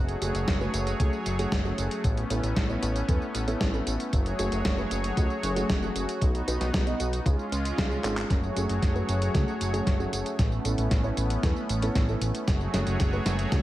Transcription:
Already playing: F#1 F#3 A3 F#4 G#4 C#5
0.09 closed hi-hat, tambourine
0.22 F#1 A3 C#4 F#4 G#4, closed hi-hat, tambourine
0.35 F#1, closed hi-hat, tambourine
0.48 F#1, kick, snare, closed hi-hat, tambourine
0.61 A3 C#4 F#4 B4, tambourine
0.74 F#1, closed hi-hat, tambourine
0.87 closed hi-hat, tambourine
1.00 C#2 A3 C#4 F#4 G#4, kick, closed hi-hat, tambourine
1.13 tambourine
1.26 F#1, closed hi-hat, tambourine
1.39 A3 C#4 F#4 G#4, closed hi-hat, tambourine
1.52 F#1, kick, snare, closed hi-hat, tambourine
1.65 A3 C#4 F#4 G#4, tambourine
1.78 F#1, closed hi-hat, tambourine
1.91 closed hi-hat, tambourine
2.04 A1 B3 C#4, kick, closed hi-hat, tambourine
2.17 closed hi-hat, tambourine
2.30 A1 B3 C#4 E4 A4, closed hi-hat, tambourine
2.43 A1, closed hi-hat, tambourine
2.56 A1, kick, snare, closed hi-hat, tambourine
2.69 B3 C#4 E4 C#5, tambourine
2.83 A1, closed hi-hat, tambourine
2.96 closed hi-hat, tambourine
3.09 E2 B3 C#4 E4 A4, kick, closed hi-hat, tambourine
3.22 tambourine
3.35 A1, closed hi-hat, tambourine
3.48 B3 C#4 E4 A4, closed hi-hat, tambourine
3.61 A1, kick, snare, closed hi-hat, tambourine
3.74 B3 C#4 E4 A4, tambourine
3.87 A1, closed hi-hat, tambourine
4.00 closed hi-hat, tambourine
4.13 F#1 F#3 F#4 G#4 C#5, kick, closed hi-hat, tambourine
4.26 closed hi-hat, tambourine
4.39 F#1 A3 C#4 F#4 G#4, closed hi-hat, tambourine
4.52 F#1, closed hi-hat, tambourine
4.65 F#1, kick, snare, closed hi-hat, tambourine
4.78 A3 C#4 F#4 B4, tambourine
4.91 F#1, closed hi-hat, tambourine
5.04 closed hi-hat, tambourine
5.17 C#2 A3 C#4 F#4 G#4, kick, closed hi-hat, tambourine
5.30 tambourine
5.43 F#1, closed hi-hat, tambourine
5.56 A3 C#4 F#4 G#4, closed hi-hat, tambourine
5.69 F#1, kick, snare, closed hi-hat, tambourine
5.82 A3 C#4 F#4 G#4, tambourine
5.95 F#1, closed hi-hat, tambourine
6.09 closed hi-hat, tambourine
6.21 B1 B3 D#4, kick, closed hi-hat, tambourine
6.35 closed hi-hat, tambourine
6.48 B1 B3 D#4 F#4 B4, closed hi-hat, tambourine
6.60 B1, snare, closed hi-hat, tambourine
6.74 B1, kick, snare, closed hi-hat, tambourine
6.87 B3 D#4 F#4 D#5, closed hi-hat, tambourine
7.00 B1, closed hi-hat, tambourine
7.13 closed hi-hat, tambourine
7.26 C#2 G#3 C#4 F4 G#4, kick, closed hi-hat, tambourine
7.39 tambourine
7.52 C#2, closed hi-hat, tambourine
7.65 closed hi-hat, tambourine
7.78 C#2 G#3 C#4 F4 G#4, kick, snare, closed hi-hat, tambourine
7.91 tambourine
8.04 G#1 G#3 C#4 F4 G#4, clap, closed hi-hat, tambourine
8.17 G#3 C#4 F4 G#4, clap, closed hi-hat, tambourine
8.30 F#1 F#3 A3 F#4 G#4 C#5, kick, snare, closed hi-hat, tambourine
8.44 tambourine
8.56 F#1 A3 C#4 F#4 G#4, closed hi-hat, tambourine
8.69 F#1, closed hi-hat, tambourine
8.82 F#1, kick, snare, closed hi-hat, tambourine
8.95 A3 C#4 F#4 B4, tambourine
9.09 F#1, closed hi-hat, tambourine
9.22 closed hi-hat, tambourine
9.34 C#2 A3 C#4 F#4 G#4, kick, snare, closed hi-hat, tambourine
9.48 tambourine
9.61 F#1, closed hi-hat, tambourine
9.73 A3 C#4 F#4 G#4, closed hi-hat, tambourine
9.87 F#1, kick, snare, closed hi-hat, tambourine
10.00 A3 C#4 F#4 G#4, tambourine
10.13 F#1, closed hi-hat, tambourine
10.26 closed hi-hat, tambourine
10.39 A1 B3 C#4, kick, snare, closed hi-hat, tambourine
10.52 tambourine
10.65 A1 B3 C#4 E4 A4, closed hi-hat, tambourine
10.78 A1, closed hi-hat, tambourine
10.91 A1, kick, snare, closed hi-hat, tambourine
11.04 B3 C#4 E4 C#5, tambourine
11.17 A1, closed hi-hat, tambourine
11.30 closed hi-hat, tambourine
11.43 E2 B3 C#4 E4 A4, kick, snare, closed hi-hat, tambourine
11.56 tambourine
11.69 A1, closed hi-hat, tambourine
11.82 B3 C#4 E4 A4, closed hi-hat, tambourine
11.95 A1, kick, snare, closed hi-hat, tambourine
12.09 B3 C#4 E4 A4, tambourine
12.21 A1, closed hi-hat, tambourine
12.35 closed hi-hat, tambourine
12.47 F#1 F#3 A3 F#4 G#4 C#5, kick, snare, closed hi-hat, tambourine
12.61 tambourine
12.74 F#1 A3 C#4 F#4 G#4, snare, closed hi-hat, tambourine
12.87 F#1, closed hi-hat, tambourine
13.00 F#1, kick, snare, closed hi-hat, tambourine
13.13 A3 C#4 F#4 B4, tambourine
13.26 F#1, snare, closed hi-hat, tambourine
13.39 closed hi-hat, tambourine
13.52 C#2 A3 C#4 F#4 G#4, kick, snare, closed hi-hat, tambourine

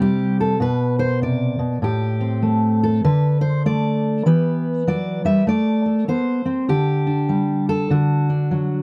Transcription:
Already playing: C3 C4
0.00 G3 G4
0.40 A4
0.60 B2 B4
0.99 C5
1.22 C3 D5
1.59 B2
1.82 A2 G4
2.21 C4
2.42 A3
2.83 A4
3.04 D3 B4
3.41 C5
3.66 A3 D5
4.26 E3 B3 G4 B4
4.87 F#3 D5
5.25 G3 E5
5.47 A3 D5
5.86 A4
6.08 B3 C5
6.45 C4
6.69 D3 G4
7.07 D4
7.29 G3
7.69 A4
7.90 D3 F#4
8.30 D4
8.51 F#3

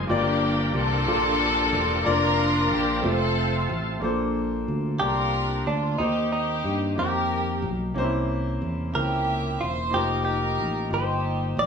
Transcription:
Already playing: G#3 D#4 F4 C5 D#5 F5 G#5
0.07 G1 G2 F3 A#3 D4 F4 G4 D5
0.73 C2 D4 F4 A4
1.05 A#1 A#3 F4 G4 A4
1.73 E1
2.03 F1 F3 A#3 D4 F4 A#4 D5
2.70 A#1 G4
3.01 F1 F3 A3 C4 F4 A4 C5
3.06 C4 F4 A4
3.69 A1
4.00 A#1 A#2 A#3 D4 A4 C5
4.68 D2
4.98 C2 A#3 D4 G4 A#4 A5
5.02 D4 F4 D5
5.67 D2 D4 F4
5.97 D#2 D#3 A#3 D#4 G4 C5
6.01 A#3 C4
6.32 A#3 C4 D#4 G4
6.64 G2
6.95 F2 A#3 D#4 G4 C5
6.99 G4 A#4
7.62 B1
7.94 C2 C3 A#3 C#4 D#4 C5
8.03 E4
8.62 E2
8.92 C#2 A#3 C#4 E4 G4 A#4 C5 E5
9.60 E1 F4 C5
9.90 A#3 D#4 F4 C5
9.94 F1 D#4 G4 A#4
10.25 D#4 G4 A#4
10.58 A1
10.89 G1 A#3 D#4 F4 G4
10.93 A#3 D#4 G4 C5
11.57 A1 D5

